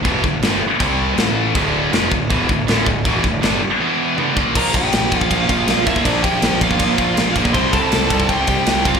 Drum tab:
CC |x---x---x---x---|x---x---x---x---|x---x-----------|x---------------|
RD |----------------|----------------|----------------|--x-x-x-x-x-x-x-|
SD |----o-------o---|----o-------o---|----o-----------|----o-------o---|
T1 |----------------|----------------|------------o---|----------------|
BD |o-o-----o-------|o-----o-o-o---o-|o-o-----------o-|o-o---ooo-o---oo|

CC |----------------|----------------|
RD |x-x-x-x-x-x-x-x-|x-x-x-x-x-x-x-x-|
SD |----o-------o---|----o-------o---|
T1 |----------------|----------------|
BD |o-o---ooo-o---oo|o-o---ooo-o---oo|